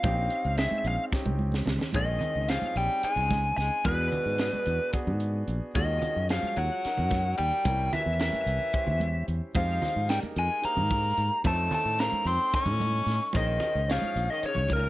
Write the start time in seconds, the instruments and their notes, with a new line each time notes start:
Already playing: lead electric guitar F5
0.03 fretless electric bass A#1, grand piano C4 C#4 D#4 G4, kick, closed hi-hat, high conga
0.30 closed hi-hat
0.45 fretless electric bass C#2, low conga
0.57 grand piano C4 C#4 D#4 G#4, lead electric guitar E5, snare, closed hi-hat
0.71 high conga
0.85 fretless electric bass A#1, lead electric guitar F5, closed hi-hat
1.12 grand piano C4 C#4 D#4 G4, kick, snare, low conga
1.26 fretless electric bass C#2, high tom, high conga
1.39 high conga
1.52 snare, high conga
1.66 fretless electric bass C#2, snare, low conga
1.79 snare, low conga
1.93 fretless electric bass A#1, tenor saxophone D#3, grand piano C4 C#4 D#4 G#4, lead electric guitar D#5, kick, closed hi-hat, high conga
2.21 closed hi-hat, low conga
2.35 fretless electric bass C#2
2.49 tenor saxophone F3, grand piano C4 C#4 D#4 G#4, lead electric guitar F5, snare, closed hi-hat
2.62 muted fretless electric bass stroke, high conga, low conga
2.76 fretless electric bass A#1, tenor saxophone G3, lead electric guitar G5, closed hi-hat
3.03 tenor saxophone G#3, grand piano C4 C#4 D#4 G#4, lead electric guitar G#5, muted fretless electric bass stroke, closed hi-hat
3.16 fretless electric bass C#2, low conga
3.30 kick, snare, closed hi-hat, high conga
3.57 fretless electric bass C#2, tenor saxophone G#3, lead electric guitar G#5, snare, closed hi-hat
3.85 fretless electric bass E2, tenor saxophone B2, grand piano B3 D4 F#4 G#4, lead electric guitar B4, kick, closed hi-hat, high conga
4.12 closed hi-hat, low conga
4.26 fretless electric bass G#2
4.38 grand piano B3 D4 F#4 G#4, snare, closed hi-hat
4.53 muted fretless electric bass stroke, high conga, low conga
4.66 fretless electric bass E2, closed hi-hat
4.93 grand piano B3 D4 F#4 G#4, muted fretless electric bass stroke, kick, closed hi-hat
5.07 fretless electric bass G#2, low conga
5.20 closed hi-hat
5.33 low conga
5.48 fretless electric bass A#1, closed hi-hat, low conga
5.74 fretless electric bass D#2, tenor saxophone D#3, grand piano C#4 F4 F#4 G#4, lead electric guitar D#5, kick, closed hi-hat, high conga
6.02 closed hi-hat, low conga
6.16 fretless electric bass F#2
6.29 tenor saxophone F3, grand piano C#4 F4 F#4 G#4, lead electric guitar F5, snare, closed hi-hat
6.43 muted fretless electric bass stroke, high conga, low conga
6.56 fretless electric bass D#2, tenor saxophone F#3, lead electric guitar F#5, closed hi-hat
6.84 grand piano C#4 D#4 F#4 A#4, muted fretless electric bass stroke, snare, closed hi-hat
6.97 fretless electric bass F#2, low conga
7.11 kick, snare, closed hi-hat, high conga
7.38 fretless electric bass D#2, tenor saxophone G3, lead electric guitar G5, closed hi-hat, low conga
7.65 fretless electric bass C2, grand piano C#4 E4 G4 A#4, kick, closed hi-hat, high conga
7.93 tenor saxophone E3, lead electric guitar E5, closed hi-hat, low conga
8.06 fretless electric bass E2
8.18 tenor saxophone E3, grand piano C#4 E4 G4 A#4, lead electric guitar E5, snare, closed hi-hat
8.33 muted fretless electric bass stroke, high conga
8.46 fretless electric bass C2, closed hi-hat, low conga
8.61 low conga
8.73 grand piano C#4 E4 G4 C5, muted fretless electric bass stroke, kick, closed hi-hat, low conga
8.87 fretless electric bass E2, low conga
9.00 closed hi-hat, high conga, low conga
9.15 low conga
9.28 fretless electric bass E2, closed hi-hat, low conga
9.54 fretless electric bass F2, tenor saxophone F3, grand piano D#4 G4 G#4 C5, lead electric guitar F5, kick, closed hi-hat, high conga
9.82 snare, closed hi-hat, low conga
9.96 fretless electric bass G#2
10.08 tenor saxophone G3, grand piano D#4 G4 G#4 A#4, lead electric guitar G5, snare, closed hi-hat
10.23 muted fretless electric bass stroke, high conga, low conga
10.36 fretless electric bass F2, tenor saxophone G#3, lead electric guitar G#5, closed hi-hat
10.62 tenor saxophone A#3, grand piano D#4 G4 G#4 C5, lead electric guitar A#5, muted fretless electric bass stroke, closed hi-hat
10.77 fretless electric bass G#2, low conga
10.91 kick, closed hi-hat, high conga
11.04 low conga
11.18 fretless electric bass G#2, closed hi-hat, low conga
11.44 fretless electric bass F2, tenor saxophone A3, grand piano C#4 D#4 A4 C5, lead electric guitar A5, kick, closed hi-hat, high conga
11.71 tenor saxophone A3, lead electric guitar A5, closed hi-hat, low conga
11.85 fretless electric bass A2
11.99 tenor saxophone A#3, grand piano C#4 D#4 A4 C5, lead electric guitar A#5, snare, closed hi-hat
12.12 muted fretless electric bass stroke, high conga, low conga
12.25 fretless electric bass F2, tenor saxophone C4, lead electric guitar C6, closed hi-hat
12.53 grand piano C#4 D#4 A4 D#5, tenor saxophone C#4, lead electric guitar C#6, muted fretless electric bass stroke, kick, closed hi-hat
12.66 fretless electric bass A2, low conga
12.80 closed hi-hat, high conga
12.94 low conga
13.06 fretless electric bass A2, snare, closed hi-hat, low conga
13.33 fretless electric bass A#1, grand piano C#4 D#4 G#4 C5, lead electric guitar D#5, kick, closed hi-hat, high conga
13.37 tenor saxophone D#3
13.60 closed hi-hat, low conga
13.75 fretless electric bass C#2
13.88 tenor saxophone F3, grand piano C#4 D#4 G#4 C#5, lead electric guitar F5, snare, closed hi-hat
14.02 muted fretless electric bass stroke, high conga, low conga
14.16 fretless electric bass A#1, closed hi-hat
14.30 tenor saxophone D#3, lead electric guitar D#5
14.42 grand piano C#4 D#4 G#4 C#5, lead electric guitar C#5, muted fretless electric bass stroke, closed hi-hat
14.48 tenor saxophone C#3
14.55 fretless electric bass C#2, low conga
14.68 kick, closed hi-hat, high conga
14.73 tenor saxophone A#2, lead electric guitar A#4